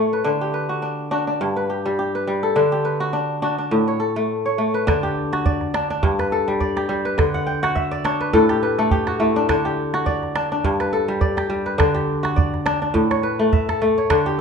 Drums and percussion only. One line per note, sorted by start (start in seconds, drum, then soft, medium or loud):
4.88 calabash thump medium
4.88 calabash click medium
5.33 calabash click soft
5.46 calabash thump medium
5.46 calabash click soft
5.61 calabash click soft
5.74 calabash click medium
5.91 calabash click soft
6.03 calabash thump medium
6.20 calabash click soft
6.61 calabash thump medium
6.77 calabash click soft
7.19 calabash thump medium
7.19 calabash click medium
7.64 calabash click soft
7.76 calabash thump medium
7.76 calabash click soft
7.93 calabash click soft
8.05 calabash click medium
8.21 calabash click soft
8.33 calabash thump medium
8.49 calabash click soft
8.78 calabash click soft
8.91 calabash thump medium
9.07 calabash click soft
9.49 calabash thump medium
9.49 calabash click medium
9.94 calabash click soft
10.07 calabash thump medium
10.07 calabash click soft
10.23 calabash click soft
10.36 calabash click medium
10.52 calabash click soft
10.64 calabash thump medium
10.80 calabash click soft
11.09 calabash click soft
11.21 calabash thump medium
11.38 calabash click medium
11.80 calabash thump medium
11.80 calabash click medium
11.96 calabash click soft
12.25 calabash click soft
12.38 calabash thump medium
12.38 calabash click soft
12.54 calabash click soft
12.66 calabash click medium
12.83 calabash click soft
12.95 calabash thump medium
12.95 calabash click soft
13.11 calabash click medium
13.53 calabash thump medium
13.53 calabash click soft
13.69 calabash click medium
13.82 calabash click soft
14.10 calabash thump medium
14.10 calabash click medium